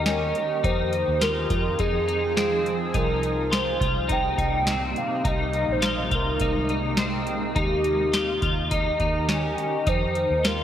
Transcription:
Already playing: D#2 D#3 D#4 G4 A#4
0.06 C#4 D#5, snare, closed hi-hat
0.35 closed hi-hat
0.63 F2 F3 C4 D#4 G#4 C5, kick, closed hi-hat
0.93 closed hi-hat
1.08 D#2
1.21 F4 A#4, snare, closed hi-hat
1.50 F2 F4, kick, closed hi-hat
1.79 F2 D#4 G#4, kick, closed hi-hat
2.08 D#4, closed hi-hat
2.36 C4 G#4, snare, closed hi-hat
2.66 closed hi-hat
2.94 C2 C3 G3 A#3 D#4 A#4, kick, closed hi-hat
3.23 closed hi-hat
3.51 F4 C5, snare, closed hi-hat
3.80 C2 F4, kick, closed hi-hat
4.09 D#4 G5, kick, closed hi-hat
4.38 C2 D#4, kick, closed hi-hat
4.67 C4, snare, closed hi-hat
4.96 F5, closed hi-hat
5.23 C2 G#3 D#4, kick, closed hi-hat
5.28 D#5
5.53 closed hi-hat
5.68 A#1 C5
5.82 F4, snare, closed hi-hat
6.11 C2 F4 A#4, kick, closed hi-hat
6.40 C2 D#4, kick, closed hi-hat
6.69 D#4, closed hi-hat
6.97 C4, snare, closed hi-hat
7.27 closed hi-hat
7.54 D#2 D#3 D#4 G4 A#4, kick, closed hi-hat
7.84 closed hi-hat
8.13 F4, snare, closed hi-hat
8.42 D#2 F4, kick, closed hi-hat
8.71 D#4 D#5, kick, closed hi-hat
9.00 D#2 D#4, kick, closed hi-hat
9.29 C#4 D#5, snare, closed hi-hat
9.58 closed hi-hat
9.86 F2 F3 C4 D#4 G#4 C5, kick, closed hi-hat
10.15 closed hi-hat
10.31 D#2
10.45 F4 A#4, snare, closed hi-hat

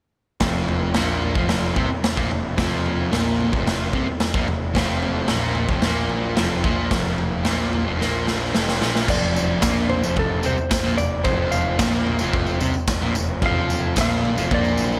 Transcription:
0.40 F1 F2 F3, kick, snare, floor tom
0.68 floor tom
0.94 A#1 A#2 A#3, snare, floor tom
1.22 floor tom
1.35 F1 F2 F3, kick
1.49 snare, floor tom
1.75 C2 C3 C4, kick, floor tom
1.89 muted distorted electric guitar stroke, muted picked electric bass stroke
2.03 muted distorted electric guitar stroke, muted picked electric bass stroke, snare, floor tom
2.16 A#1 A#2 A#3, kick
2.30 F1 F2, floor tom
2.57 F1 F2 F3, kick, snare, floor tom
2.86 floor tom
3.11 A#1 A#2 A#3, snare, floor tom
3.40 floor tom
3.52 F1 F2 F3, kick
3.67 snare, floor tom
3.93 C2 C3 C4, kick, floor tom
4.07 muted distorted electric guitar stroke, muted picked electric bass stroke
4.20 muted distorted electric guitar stroke, muted picked electric bass stroke, snare, floor tom
4.34 A#1 A#2 A#3, kick
4.48 F1 F2, floor tom
4.74 F1 F2 F3, kick, snare, floor tom
5.03 floor tom
5.28 A#1 A#2 A#3, snare, floor tom
5.55 floor tom
5.69 F1 F2 F3, kick
5.82 A#1 A#2 A#3, snare, floor tom
6.09 floor tom
6.36 F1 F2 F3, snare, floor tom
6.64 A#1 A#2 A#3, kick, floor tom
6.89 F1 F2 F3, kick, snare, floor tom
7.18 floor tom
7.44 A#1 A#2 A#3, snare, floor tom
7.73 floor tom
7.84 F1 F2 F3
7.98 A#1 A#2 A#3, snare
8.27 snare
8.52 F1 F2 F3, snare
8.68 snare
8.80 A#1 A#2 A#3, snare
8.96 snare
9.07 F1 F2 F3 D5, kick, floor tom, crash, tambourine
9.35 floor tom, tambourine
9.61 A#1 A#2 A#3, kick, snare, floor tom, tambourine
9.77 tambourine
9.90 C5, floor tom
10.02 F1 F2 F3, tambourine
10.16 A4, kick, floor tom
10.42 C3 C4 C5, floor tom, tambourine
10.47 C2
10.57 muted distorted electric guitar stroke, muted picked electric bass stroke, tambourine
10.70 muted distorted electric guitar stroke, muted picked electric bass stroke, kick, snare, floor tom, tambourine
10.83 A#1 A#2 A#3, tambourine
10.96 F2 D5, floor tom, tambourine
11.00 F1
11.23 F1 F2 F3 C5, kick, floor tom, tambourine
11.51 F5, floor tom, tambourine
11.78 A#1 A#2 A#3, kick, snare, floor tom, tambourine
11.93 tambourine
12.07 floor tom
12.18 F1 F2 F3, tambourine
12.33 kick, floor tom
12.47 tambourine
12.59 C2 C3 C4, floor tom, tambourine
12.74 muted distorted electric guitar stroke, muted picked electric bass stroke, tambourine
12.87 muted distorted electric guitar stroke, muted picked electric bass stroke, kick, snare, floor tom, tambourine
13.01 A#1 A#2 A#3
13.15 F1 F2, floor tom, tambourine
13.42 F1 F2 F3 F5, kick, floor tom, tambourine
13.70 floor tom, tambourine
13.96 A#1 A#2 A#3, kick, snare, floor tom, tambourine
14.01 F5
14.10 tambourine
14.25 floor tom
14.37 F1 F2 F3, tambourine
14.51 A#1 A#2 A#3 D5, kick, floor tom
14.65 tambourine
14.77 floor tom, tambourine
14.92 tambourine

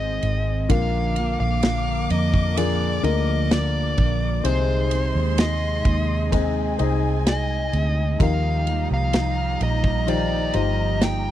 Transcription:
Already playing: G#1 D#3 G#3 C4 D#4 G#4 C5 D#5 D#6
0.22 G#1, ride
0.69 A#1 A#2 D3 F3 A#3 D4 F4 A#4 F5 D6, kick, ride
1.16 F3 A#3 D4 A#4, ride
1.40 A#1 F5
1.63 F3 A#3 D4 A#4, snare, ride
2.10 F2 F3 A#3 A#4 D#5, ride
2.34 kick
2.56 A#2 D3 F3 A#3 D4 F4 G#4 A#4 D5, ride
3.03 D2 D3 F3 A#3 F4 A#4 D#5, ride
3.51 D5, snare, ride
3.97 A#1 F3 A#3 D4 A#4, kick, ride
4.44 C2 C3 G#3 C4 D#4 G#4 C5 C6, ride
4.90 C4 D#4 G#4, ride
5.15 D#2
5.37 G#3 C4 D#4 G#4 D#5, snare, ride
5.85 D#2, kick, ride
6.32 C3 G#3 C4 D#4 G#4 D#5 G#5, kick, ride
6.79 C2 C4 D#4 G#4 D#5, ride
7.27 D#5, snare, ride
7.72 D2 C4 D#4 G#4, ride
8.19 D#2 D#3 F3 G3 A#3 D#4 F4 G4 A#4 F5 A#5, kick, ride
8.66 A#3 D#4 G4, ride
8.91 C2 F5
9.13 F3 A#3 D#4 G4, snare, ride
9.61 A#1 D#5, ride
9.84 kick
10.07 D#3 F3 A#3 D#4 F4 G4 C5 D5, ride
10.53 G1 A#3 D#4 F4 G4 C5 D#5, ride
11.02 G5, snare, ride

